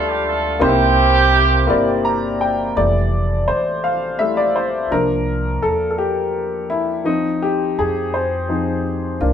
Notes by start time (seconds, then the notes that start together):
Already playing: D2 G2 A3 D4 F4 G4 A4 B4
0.09 G4
0.28 A4
0.59 C2 C3 A#3 C4 D#4 G4 C5
0.64 E4 G4
1.67 G1 A#3 C4 E4 G4 D5
2.05 A#5
2.41 G5
2.76 F1 E3 G3 A3 D5
3.48 A1 C5
3.84 F5
4.19 G3 A3 E4 E5
4.37 D5
4.56 C5
4.91 C2 F3 A#3 D4 A#4
5.62 E2 A4
5.90 A4
5.98 G4
6.70 E4
7.04 C#2 F3 C4 D#4
7.42 G4
7.78 F2 G#4
8.14 C5
8.49 F3 C4 D#4
9.21 C2 A#3 D4 F4